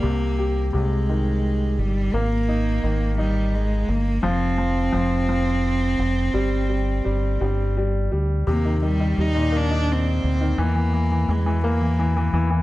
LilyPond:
<<
  \new Staff \with { instrumentName = "Cello" } { \time 6/8 \key ees \major \tempo 4. = 57 bes4 aes4. g8 | bes4. g8 aes8 bes8 | c'2.~ | c'2 r4 |
bes8 g8 ees'8 d'8 c'4 | bes4 gis8 bes4 r8 | }
  \new Staff \with { instrumentName = "Grand piano" } { \clef bass \time 6/8 \key ees \major c8 g'8 c8 ees4. | bes8 ees'8 ees8 ees'4. | f8 f8 f8 f4. | g8 g8 g8 g8 g8 g8 |
c16 ees16 ees16 ees16 g16 bes,16 bes16 ees'4 ees16 | e16 e16 e16 e16 e16 e16 bes16 e16 e16 e16 e16 e16 | }
  \new Staff \with { instrumentName = "Fingered electric bass" } { \clef bass \time 6/8 \key ees \major c,4 c,4. g,,8 | aes,,4 aes,,4. g,,8 | f,,4 f,,4. f,,8 | g,,4 g,,8 g,,4 d,8 |
ees,4 ees,4. d,8 | e,4 e,4. e,8 | }
>>